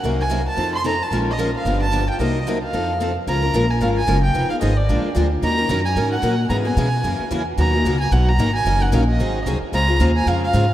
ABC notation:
X:1
M:4/4
L:1/8
Q:"Swing" 1/4=223
K:Bbm
V:1 name="Violin"
z a2 =a2 c' b a | z e2 f2 =a2 =g | e2 z f4 z | b3 a f a2 =g- |
=g f e =d3 z2 | b3 a2 g3 | b a6 z | ^a3 _a ^f ^a2 _a- |
a g f e3 z2 | b2 z a f f3 |]
V:2 name="Steel-string acoustic guitar"
[C,G,B,EB] z [C,G,B,EB] z [F,CE=A] z [F,CEA] z | [F,A,DFB] z [F,A,DFB] z [=D,F,=B,=D=G] z [D,F,B,DG] z | [C,G,B,EB] z [C,G,B,EB] z [F,CE=A] z [F,CEA] z | [F,A,DFB] [DFB] [F,A,DFB] z [F,A,DFB] z [F,A,DFB] z |
[F,_CEA] [CEA] [F,CEA] z [F,A,=DFB] z [F,A,DFB] z | [E,G,DEB] [DEB] [E,G,DEB] z [E,G,DEB] z [E,G,DEB] z | [D,_F,_CDA] [CDA] [D,F,CDA] z [D,F,B,DG] z [D,F,B,DG] z | [=B,,^F,^A,^D^F] [A,DF] [B,,F,A,DF] z [B,,F,A,DF] z [B,,F,A,DF] z |
[E,G,DEB] [DEB] [E,G,DEB] z [E,G,CEA] z [E,G,CEA] z | [D,A,CFA] [CFA] [D,A,CFA] z [D,A,CFA] z [D,A,CFA] z |]
V:3 name="Steel-string acoustic guitar"
[C,G,B,EB] z [C,G,B,EB] z [F,CE=A] z [F,CEA] z | [F,A,DFB] z [F,A,DFB] z [=D,F,=B,=D=G] z [D,F,B,DG] z | [C,G,B,EB] z [C,G,B,EB] z [F,CE=A] z [F,CEA] z | [F,A,DFB] z [F,A,DFB] z [F,A,DFB] z [F,A,DFB] z |
[F,_CEA] z [F,CEA] z [=D,F,B,=DA] z [D,F,B,DA] z | [E,G,DEB] z [E,G,DEB] z [E,G,DEB] z [E,G,DEB] z | [D,A,_C_FA] z [D,A,CFA] z [G,DFB] z [G,DFB] z | [=B,,^D,^F,=B,^D^A] z [B,,D,F,B,DA] z [B,,D,F,B,DA] z [B,,D,F,B,DA] z |
[E,G,DEB] z [E,G,DEB] z [E,G,CEA] z [E,G,CEA] z | [D,A,CFA] z [D,A,CFA] z [D,A,CFA] z [D,A,CFA] z |]
V:4 name="Upright bass" clef=bass
C,,4 F,,4 | B,,,4 =G,,,4 | C,,4 F,,4 | D,,2 B,,,2 A,,,2 G,,,2 |
F,,, z A,,,2 B,,, z =D,,2 | E,,2 G,,2 A,,2 B,,2 | A,,2 _C,2 G,, z _F,,2 | ^D,,2 _D,,2 =B,,,2 A,,,2 |
G,,,2 B,,,2 A,,,2 C,, z | D,,2 E,,2 F,,2 A,,2 |]